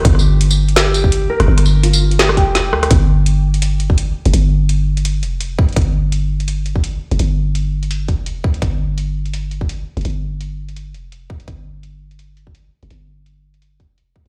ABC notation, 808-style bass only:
X:1
M:4/4
L:1/16
Q:"Swing 16ths" 1/4=168
K:Cdor
V:1 name="808-style bass" clef=bass
G,,,12- G,,,2 z F,,, | G,,,8- G,,,3 F,,,3 D,,2 | G,,,12- G,,,2 z F,,, | G,,,8- G,,,2 F,,,6 |
G,,,12- G,,,2 z F,,, | G,,,8- G,,,3 F,,,3 D,,2 | G,,,12- G,,,2 z F,,, | G,,,8- G,,,2 F,,,6 |
G,,,12- G,,,2 z F,,, | G,,,8- G,,,2 F,,,4 D,, z |]